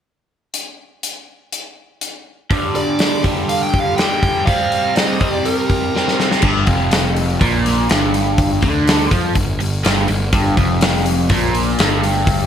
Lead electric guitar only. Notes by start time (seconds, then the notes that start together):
2.76 D5
3.49 F5
3.63 G5
3.80 F5
3.96 G5
4.46 F5
4.95 D#5
5.33 D5
5.45 A#4